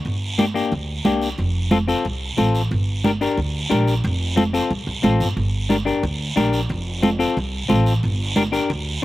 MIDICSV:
0, 0, Header, 1, 4, 480
1, 0, Start_track
1, 0, Key_signature, -2, "minor"
1, 0, Tempo, 332410
1, 75, Time_signature, 4, 2, 24, 8
1, 13061, End_track
2, 0, Start_track
2, 0, Title_t, "Clean electric guitar"
2, 0, Program_c, 0, 27
2, 551, Note_on_c, 0, 58, 78
2, 556, Note_on_c, 0, 62, 73
2, 562, Note_on_c, 0, 67, 88
2, 637, Note_off_c, 0, 58, 0
2, 640, Note_off_c, 0, 62, 0
2, 641, Note_off_c, 0, 67, 0
2, 785, Note_on_c, 0, 58, 74
2, 793, Note_on_c, 0, 62, 61
2, 802, Note_on_c, 0, 67, 77
2, 1042, Note_off_c, 0, 58, 0
2, 1044, Note_off_c, 0, 62, 0
2, 1050, Note_off_c, 0, 67, 0
2, 1511, Note_on_c, 0, 58, 70
2, 1516, Note_on_c, 0, 62, 71
2, 1524, Note_on_c, 0, 67, 90
2, 1848, Note_off_c, 0, 58, 0
2, 1851, Note_off_c, 0, 62, 0
2, 1853, Note_off_c, 0, 67, 0
2, 2469, Note_on_c, 0, 60, 82
2, 2474, Note_on_c, 0, 65, 70
2, 2485, Note_on_c, 0, 69, 89
2, 2555, Note_off_c, 0, 60, 0
2, 2557, Note_off_c, 0, 65, 0
2, 2563, Note_off_c, 0, 69, 0
2, 2709, Note_on_c, 0, 60, 75
2, 2716, Note_on_c, 0, 65, 61
2, 2725, Note_on_c, 0, 69, 81
2, 2963, Note_off_c, 0, 60, 0
2, 2968, Note_off_c, 0, 65, 0
2, 2968, Note_off_c, 0, 69, 0
2, 3429, Note_on_c, 0, 60, 71
2, 3437, Note_on_c, 0, 65, 67
2, 3441, Note_on_c, 0, 69, 82
2, 3767, Note_off_c, 0, 60, 0
2, 3770, Note_off_c, 0, 65, 0
2, 3773, Note_off_c, 0, 69, 0
2, 4393, Note_on_c, 0, 62, 73
2, 4398, Note_on_c, 0, 67, 71
2, 4410, Note_on_c, 0, 70, 82
2, 4477, Note_off_c, 0, 62, 0
2, 4478, Note_off_c, 0, 67, 0
2, 4485, Note_off_c, 0, 70, 0
2, 4635, Note_on_c, 0, 62, 74
2, 4641, Note_on_c, 0, 67, 65
2, 4651, Note_on_c, 0, 70, 79
2, 4885, Note_off_c, 0, 62, 0
2, 4889, Note_off_c, 0, 67, 0
2, 4894, Note_off_c, 0, 70, 0
2, 5336, Note_on_c, 0, 62, 75
2, 5343, Note_on_c, 0, 67, 75
2, 5352, Note_on_c, 0, 70, 89
2, 5680, Note_off_c, 0, 62, 0
2, 5683, Note_off_c, 0, 67, 0
2, 5688, Note_off_c, 0, 70, 0
2, 6298, Note_on_c, 0, 60, 81
2, 6307, Note_on_c, 0, 65, 69
2, 6312, Note_on_c, 0, 69, 87
2, 6389, Note_off_c, 0, 60, 0
2, 6393, Note_off_c, 0, 65, 0
2, 6394, Note_off_c, 0, 69, 0
2, 6546, Note_on_c, 0, 60, 72
2, 6553, Note_on_c, 0, 65, 63
2, 6559, Note_on_c, 0, 69, 77
2, 6801, Note_off_c, 0, 60, 0
2, 6804, Note_off_c, 0, 65, 0
2, 6807, Note_off_c, 0, 69, 0
2, 7265, Note_on_c, 0, 60, 77
2, 7272, Note_on_c, 0, 65, 72
2, 7283, Note_on_c, 0, 69, 81
2, 7604, Note_off_c, 0, 60, 0
2, 7607, Note_off_c, 0, 65, 0
2, 7613, Note_off_c, 0, 69, 0
2, 8221, Note_on_c, 0, 62, 80
2, 8229, Note_on_c, 0, 67, 73
2, 8232, Note_on_c, 0, 70, 90
2, 8310, Note_off_c, 0, 62, 0
2, 8314, Note_off_c, 0, 67, 0
2, 8315, Note_off_c, 0, 70, 0
2, 8452, Note_on_c, 0, 62, 72
2, 8462, Note_on_c, 0, 67, 70
2, 8469, Note_on_c, 0, 70, 82
2, 8715, Note_off_c, 0, 62, 0
2, 8717, Note_off_c, 0, 67, 0
2, 8722, Note_off_c, 0, 70, 0
2, 9183, Note_on_c, 0, 62, 73
2, 9192, Note_on_c, 0, 67, 72
2, 9199, Note_on_c, 0, 70, 89
2, 9523, Note_off_c, 0, 62, 0
2, 9528, Note_off_c, 0, 67, 0
2, 9531, Note_off_c, 0, 70, 0
2, 10144, Note_on_c, 0, 60, 84
2, 10147, Note_on_c, 0, 65, 72
2, 10157, Note_on_c, 0, 69, 84
2, 10232, Note_off_c, 0, 60, 0
2, 10233, Note_off_c, 0, 65, 0
2, 10239, Note_off_c, 0, 69, 0
2, 10381, Note_on_c, 0, 60, 74
2, 10388, Note_on_c, 0, 65, 68
2, 10393, Note_on_c, 0, 69, 80
2, 10640, Note_off_c, 0, 60, 0
2, 10641, Note_off_c, 0, 65, 0
2, 10645, Note_off_c, 0, 69, 0
2, 11097, Note_on_c, 0, 60, 83
2, 11103, Note_on_c, 0, 65, 70
2, 11114, Note_on_c, 0, 69, 85
2, 11442, Note_off_c, 0, 60, 0
2, 11445, Note_off_c, 0, 65, 0
2, 11450, Note_off_c, 0, 69, 0
2, 12070, Note_on_c, 0, 62, 79
2, 12082, Note_on_c, 0, 67, 77
2, 12083, Note_on_c, 0, 70, 91
2, 12156, Note_off_c, 0, 62, 0
2, 12162, Note_off_c, 0, 70, 0
2, 12163, Note_off_c, 0, 67, 0
2, 12303, Note_on_c, 0, 62, 72
2, 12309, Note_on_c, 0, 67, 70
2, 12316, Note_on_c, 0, 70, 79
2, 12562, Note_off_c, 0, 62, 0
2, 12563, Note_off_c, 0, 67, 0
2, 12568, Note_off_c, 0, 70, 0
2, 13061, End_track
3, 0, Start_track
3, 0, Title_t, "Upright bass"
3, 0, Program_c, 1, 32
3, 78, Note_on_c, 1, 31, 85
3, 844, Note_off_c, 1, 31, 0
3, 1041, Note_on_c, 1, 38, 91
3, 1422, Note_off_c, 1, 38, 0
3, 1521, Note_on_c, 1, 36, 81
3, 1902, Note_off_c, 1, 36, 0
3, 1999, Note_on_c, 1, 29, 88
3, 2765, Note_off_c, 1, 29, 0
3, 2963, Note_on_c, 1, 36, 91
3, 3343, Note_off_c, 1, 36, 0
3, 3438, Note_on_c, 1, 33, 83
3, 3820, Note_off_c, 1, 33, 0
3, 3916, Note_on_c, 1, 31, 90
3, 4683, Note_off_c, 1, 31, 0
3, 4875, Note_on_c, 1, 38, 86
3, 5257, Note_off_c, 1, 38, 0
3, 5359, Note_on_c, 1, 34, 81
3, 5740, Note_off_c, 1, 34, 0
3, 5838, Note_on_c, 1, 29, 98
3, 6603, Note_off_c, 1, 29, 0
3, 6796, Note_on_c, 1, 36, 87
3, 6986, Note_off_c, 1, 36, 0
3, 7031, Note_on_c, 1, 36, 84
3, 7247, Note_off_c, 1, 36, 0
3, 7272, Note_on_c, 1, 33, 72
3, 7488, Note_off_c, 1, 33, 0
3, 7511, Note_on_c, 1, 31, 78
3, 7727, Note_off_c, 1, 31, 0
3, 7747, Note_on_c, 1, 31, 84
3, 8517, Note_off_c, 1, 31, 0
3, 8708, Note_on_c, 1, 38, 94
3, 9094, Note_off_c, 1, 38, 0
3, 9197, Note_on_c, 1, 34, 77
3, 9579, Note_off_c, 1, 34, 0
3, 9672, Note_on_c, 1, 29, 97
3, 10440, Note_off_c, 1, 29, 0
3, 10643, Note_on_c, 1, 36, 89
3, 11023, Note_off_c, 1, 36, 0
3, 11123, Note_on_c, 1, 33, 78
3, 11504, Note_off_c, 1, 33, 0
3, 11602, Note_on_c, 1, 31, 87
3, 12368, Note_off_c, 1, 31, 0
3, 12560, Note_on_c, 1, 38, 95
3, 12943, Note_off_c, 1, 38, 0
3, 13061, End_track
4, 0, Start_track
4, 0, Title_t, "Drums"
4, 70, Note_on_c, 9, 74, 67
4, 78, Note_on_c, 9, 63, 29
4, 214, Note_off_c, 9, 74, 0
4, 222, Note_off_c, 9, 63, 0
4, 559, Note_on_c, 9, 63, 81
4, 559, Note_on_c, 9, 73, 67
4, 703, Note_off_c, 9, 73, 0
4, 704, Note_off_c, 9, 63, 0
4, 801, Note_on_c, 9, 73, 62
4, 945, Note_off_c, 9, 73, 0
4, 1034, Note_on_c, 9, 63, 33
4, 1035, Note_on_c, 9, 74, 62
4, 1178, Note_off_c, 9, 63, 0
4, 1179, Note_off_c, 9, 74, 0
4, 1514, Note_on_c, 9, 63, 76
4, 1521, Note_on_c, 9, 73, 69
4, 1659, Note_off_c, 9, 63, 0
4, 1665, Note_off_c, 9, 73, 0
4, 1756, Note_on_c, 9, 73, 63
4, 1900, Note_off_c, 9, 73, 0
4, 1989, Note_on_c, 9, 74, 67
4, 1996, Note_on_c, 9, 63, 32
4, 2134, Note_off_c, 9, 74, 0
4, 2141, Note_off_c, 9, 63, 0
4, 2471, Note_on_c, 9, 73, 68
4, 2472, Note_on_c, 9, 63, 74
4, 2616, Note_off_c, 9, 63, 0
4, 2616, Note_off_c, 9, 73, 0
4, 2721, Note_on_c, 9, 73, 61
4, 2865, Note_off_c, 9, 73, 0
4, 2959, Note_on_c, 9, 74, 65
4, 2960, Note_on_c, 9, 63, 33
4, 3104, Note_off_c, 9, 63, 0
4, 3104, Note_off_c, 9, 74, 0
4, 3435, Note_on_c, 9, 63, 75
4, 3442, Note_on_c, 9, 73, 66
4, 3580, Note_off_c, 9, 63, 0
4, 3586, Note_off_c, 9, 73, 0
4, 3678, Note_on_c, 9, 73, 67
4, 3822, Note_off_c, 9, 73, 0
4, 3912, Note_on_c, 9, 63, 33
4, 3921, Note_on_c, 9, 74, 64
4, 4056, Note_off_c, 9, 63, 0
4, 4065, Note_off_c, 9, 74, 0
4, 4396, Note_on_c, 9, 63, 74
4, 4403, Note_on_c, 9, 73, 62
4, 4540, Note_off_c, 9, 63, 0
4, 4547, Note_off_c, 9, 73, 0
4, 4639, Note_on_c, 9, 73, 68
4, 4783, Note_off_c, 9, 73, 0
4, 4872, Note_on_c, 9, 74, 65
4, 4875, Note_on_c, 9, 63, 35
4, 5016, Note_off_c, 9, 74, 0
4, 5019, Note_off_c, 9, 63, 0
4, 5353, Note_on_c, 9, 73, 66
4, 5364, Note_on_c, 9, 63, 74
4, 5497, Note_off_c, 9, 73, 0
4, 5508, Note_off_c, 9, 63, 0
4, 5595, Note_on_c, 9, 73, 64
4, 5740, Note_off_c, 9, 73, 0
4, 5831, Note_on_c, 9, 74, 65
4, 5841, Note_on_c, 9, 63, 31
4, 5976, Note_off_c, 9, 74, 0
4, 5986, Note_off_c, 9, 63, 0
4, 6316, Note_on_c, 9, 73, 67
4, 6317, Note_on_c, 9, 63, 77
4, 6461, Note_off_c, 9, 63, 0
4, 6461, Note_off_c, 9, 73, 0
4, 6556, Note_on_c, 9, 73, 67
4, 6701, Note_off_c, 9, 73, 0
4, 6794, Note_on_c, 9, 74, 66
4, 6796, Note_on_c, 9, 63, 32
4, 6939, Note_off_c, 9, 74, 0
4, 6941, Note_off_c, 9, 63, 0
4, 7269, Note_on_c, 9, 73, 61
4, 7278, Note_on_c, 9, 63, 80
4, 7413, Note_off_c, 9, 73, 0
4, 7423, Note_off_c, 9, 63, 0
4, 7514, Note_on_c, 9, 73, 68
4, 7659, Note_off_c, 9, 73, 0
4, 7753, Note_on_c, 9, 74, 71
4, 7756, Note_on_c, 9, 63, 31
4, 7898, Note_off_c, 9, 74, 0
4, 7901, Note_off_c, 9, 63, 0
4, 8230, Note_on_c, 9, 63, 69
4, 8232, Note_on_c, 9, 73, 65
4, 8375, Note_off_c, 9, 63, 0
4, 8376, Note_off_c, 9, 73, 0
4, 8473, Note_on_c, 9, 73, 64
4, 8617, Note_off_c, 9, 73, 0
4, 8715, Note_on_c, 9, 74, 66
4, 8716, Note_on_c, 9, 63, 34
4, 8860, Note_off_c, 9, 74, 0
4, 8861, Note_off_c, 9, 63, 0
4, 9191, Note_on_c, 9, 73, 63
4, 9200, Note_on_c, 9, 63, 78
4, 9336, Note_off_c, 9, 73, 0
4, 9345, Note_off_c, 9, 63, 0
4, 9427, Note_on_c, 9, 73, 63
4, 9572, Note_off_c, 9, 73, 0
4, 9665, Note_on_c, 9, 74, 68
4, 9678, Note_on_c, 9, 63, 31
4, 9810, Note_off_c, 9, 74, 0
4, 9822, Note_off_c, 9, 63, 0
4, 10154, Note_on_c, 9, 63, 76
4, 10156, Note_on_c, 9, 73, 68
4, 10298, Note_off_c, 9, 63, 0
4, 10301, Note_off_c, 9, 73, 0
4, 10395, Note_on_c, 9, 73, 63
4, 10539, Note_off_c, 9, 73, 0
4, 10638, Note_on_c, 9, 74, 63
4, 10642, Note_on_c, 9, 63, 31
4, 10782, Note_off_c, 9, 74, 0
4, 10786, Note_off_c, 9, 63, 0
4, 11112, Note_on_c, 9, 73, 65
4, 11114, Note_on_c, 9, 63, 76
4, 11257, Note_off_c, 9, 73, 0
4, 11258, Note_off_c, 9, 63, 0
4, 11354, Note_on_c, 9, 73, 67
4, 11499, Note_off_c, 9, 73, 0
4, 11596, Note_on_c, 9, 74, 72
4, 11602, Note_on_c, 9, 63, 30
4, 11740, Note_off_c, 9, 74, 0
4, 11747, Note_off_c, 9, 63, 0
4, 12073, Note_on_c, 9, 63, 73
4, 12081, Note_on_c, 9, 73, 69
4, 12217, Note_off_c, 9, 63, 0
4, 12225, Note_off_c, 9, 73, 0
4, 12317, Note_on_c, 9, 73, 65
4, 12462, Note_off_c, 9, 73, 0
4, 12558, Note_on_c, 9, 63, 35
4, 12562, Note_on_c, 9, 74, 66
4, 12702, Note_off_c, 9, 63, 0
4, 12707, Note_off_c, 9, 74, 0
4, 13061, End_track
0, 0, End_of_file